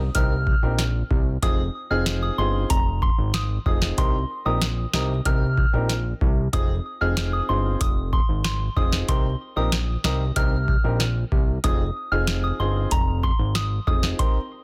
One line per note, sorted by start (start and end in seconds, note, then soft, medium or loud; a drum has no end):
0.00 impact medium
0.15 0.55 C2 loud
0.15 0.31 C4 medium
0.15 0.32 D#4 medium
0.15 0.32 G4 medium
0.15 0.32 A#4 loud
0.15 0.60 F6 loud
0.15 kick medium
0.15 closed hi-hat medium
0.47 kick loud
0.63 1.03 A#1 medium
0.63 0.79 C4 medium
0.63 0.79 D#4 medium
0.63 0.80 G4 medium
0.63 0.80 A#4 medium
0.79 snare medium
0.79 closed hi-hat medium
1.11 1.38 C2 loud
1.11 kick medium
1.42 1.69 F1 loud
1.42 1.59 C4 loud
1.42 1.59 D#4 medium
1.42 1.59 F4 medium
1.42 1.59 G#4 loud
1.42 1.54 D#6 loud
1.42 kick loud
1.42 closed hi-hat medium
1.90 2.31 F1 medium
1.90 2.34 C4 medium
1.90 2.35 D#4 medium
1.90 2.35 F4 medium
1.90 2.35 G#4 medium
1.90 2.02 F6 medium
2.06 snare loud
2.06 closed hi-hat medium
2.23 2.34 D#6 medium
2.38 2.65 G1 loud
2.38 2.68 C4 medium
2.38 2.68 D#4 medium
2.38 2.68 F4 medium
2.38 2.68 G#4 medium
2.38 2.50 C6 medium
2.70 3.11 F1 loud
2.70 2.82 A#5 medium
2.70 kick medium
2.70 closed hi-hat medium
3.02 3.14 C6 medium
3.02 kick loud
3.18 3.59 G#1 medium
3.34 3.46 D#6 medium
3.34 snare loud
3.34 closed hi-hat medium
3.66 3.93 F1 loud
3.66 3.95 C4 medium
3.66 3.95 D#4 medium
3.66 3.95 F4 medium
3.66 3.96 G#4 medium
3.66 3.78 D#6 medium
3.66 kick medium
3.82 snare medium
3.98 4.25 C2 loud
3.98 4.14 C4 loud
3.98 4.14 D#4 medium
3.98 4.15 G4 medium
3.98 4.15 A#4 loud
3.98 4.10 C6 loud
3.98 kick loud
3.98 closed hi-hat medium
4.45 4.86 A#1 loud
4.45 4.62 C4 medium
4.45 4.62 D#4 medium
4.45 4.62 G4 medium
4.45 4.63 A#4 medium
4.45 4.57 D#6 medium
4.62 snare loud
4.62 closed hi-hat medium
4.93 5.21 C2 loud
4.93 5.10 C4 medium
4.93 5.10 D#4 medium
4.93 5.10 G4 medium
4.93 5.10 A#4 medium
4.93 5.05 D#6 medium
4.93 snare loud
5.25 5.66 C2 loud
5.25 5.42 C4 medium
5.25 5.42 D#4 medium
5.25 5.42 G4 medium
5.25 5.42 A#4 loud
5.25 5.71 F6 loud
5.25 kick loud
5.25 closed hi-hat medium
5.58 kick loud
5.73 6.14 A#1 medium
5.73 5.90 C4 medium
5.73 5.90 D#4 medium
5.73 5.90 G4 medium
5.73 5.90 A#4 medium
5.89 snare medium
5.89 closed hi-hat medium
6.21 6.48 C2 loud
6.21 kick loud
6.53 6.80 F1 loud
6.53 6.70 C4 medium
6.53 6.70 D#4 medium
6.53 6.70 F4 medium
6.53 6.70 G#4 loud
6.53 6.65 D#6 loud
6.53 kick loud
6.53 closed hi-hat medium
7.01 7.42 F1 medium
7.01 7.45 C4 medium
7.01 7.45 D#4 medium
7.01 7.45 F4 medium
7.01 7.45 G#4 medium
7.01 7.13 F6 medium
7.17 snare loud
7.17 closed hi-hat medium
7.33 7.45 D#6 medium
7.49 7.76 G1 loud
7.49 7.78 C4 medium
7.49 7.78 D#4 medium
7.49 7.78 F4 medium
7.49 7.79 G#4 medium
7.49 7.60 C6 medium
7.81 8.21 F1 loud
7.81 7.92 D#6 medium
7.81 kick loud
7.81 closed hi-hat medium
8.13 8.24 C6 medium
8.13 kick loud
8.29 8.69 G#1 medium
8.44 8.56 C6 medium
8.44 snare loud
8.44 closed hi-hat medium
8.76 9.04 F1 loud
8.76 9.06 C4 medium
8.76 9.06 D#4 medium
8.76 9.06 F4 medium
8.76 9.06 G#4 medium
8.76 8.88 D#6 medium
8.76 kick medium
8.92 snare medium
9.08 9.35 C2 loud
9.08 9.25 C4 loud
9.08 9.25 D#4 medium
9.08 9.25 G4 medium
9.08 9.25 A#4 loud
9.08 9.20 C6 medium
9.08 kick loud
9.08 closed hi-hat medium
9.56 9.97 A#1 medium
9.56 9.73 C4 medium
9.56 9.73 D#4 medium
9.56 9.73 G4 medium
9.56 9.73 A#4 medium
9.56 9.68 D#6 medium
9.72 snare loud
9.72 closed hi-hat medium
10.04 10.31 C2 loud
10.04 10.21 C4 medium
10.04 10.21 D#4 medium
10.04 10.21 G4 medium
10.04 10.21 A#4 medium
10.04 10.16 D#6 medium
10.04 snare loud
10.36 10.77 C2 loud
10.36 10.53 C4 loud
10.36 10.53 D#4 medium
10.36 10.53 G4 medium
10.36 10.53 A#4 loud
10.36 10.81 F6 loud
10.36 kick loud
10.36 closed hi-hat medium
10.68 kick loud
10.84 11.25 A#1 loud
10.84 11.01 C4 medium
10.84 11.01 D#4 medium
10.84 11.01 G4 medium
10.84 11.01 A#4 medium
11.00 snare medium
11.00 closed hi-hat medium
11.32 11.59 C2 loud
11.32 kick medium
11.64 11.91 F1 loud
11.64 11.80 C4 medium
11.64 11.81 D#4 medium
11.64 11.81 F4 medium
11.64 11.81 G#4 loud
11.64 11.75 D#6 loud
11.64 kick loud
11.64 closed hi-hat medium
12.12 12.52 F1 loud
12.12 12.56 C4 medium
12.12 12.56 D#4 medium
12.12 12.56 F4 medium
12.12 12.56 G#4 medium
12.12 12.23 F6 medium
12.27 snare loud
12.27 closed hi-hat medium
12.44 12.55 D#6 medium
12.60 12.87 G1 loud
12.60 12.89 C4 medium
12.60 12.89 D#4 medium
12.60 12.89 F4 medium
12.60 12.89 G#4 medium
12.60 12.71 C6 medium
12.91 13.32 F1 loud
12.91 13.03 A#5 loud
12.91 kick medium
12.91 closed hi-hat medium
13.23 13.35 C6 medium
13.23 kick loud
13.39 13.80 G#1 medium
13.55 13.67 D#6 medium
13.55 snare loud
13.55 closed hi-hat medium
13.87 14.14 F1 loud
13.87 14.17 C4 medium
13.87 14.17 D#4 medium
13.87 14.17 F4 medium
13.87 14.17 G#4 medium
13.87 13.99 D#6 medium
13.87 kick loud
14.03 snare medium
14.19 14.36 C4 loud
14.19 14.36 D#4 medium
14.19 14.36 G4 medium
14.19 14.36 A#4 loud
14.19 14.31 C6 loud
14.19 kick loud
14.19 closed hi-hat medium